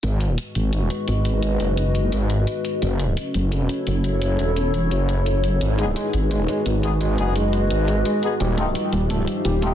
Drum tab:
HH |xxxxxxxx|xxxxxxxx|xxxxxxxx|xxxxxxxx|

HH |xxxxxxxx|xxxxxxxx|xxxxxxxx|